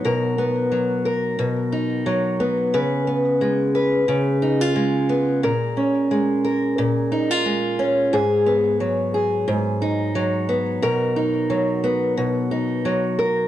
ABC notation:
X:1
M:4/4
L:1/16
Q:"Swing 16ths" 1/4=89
K:Blyd
V:1 name="Steel-string acoustic guitar"
[B,,A]2 B,2 F,2 A2 B,,2 D2 F,2 B,2 | [C,B]2 B,2 G,2 B2 C,2 D E G,2 B,2 | [A,,A]2 C2 G,2 A2 A,,2 D E G,2 C2 | [G,,G]2 B,2 F,2 G2 G,,2 D2 F,2 B,2 |
[B,,A]2 D2 F,2 B,2 B,,2 D2 F,2 A2 |]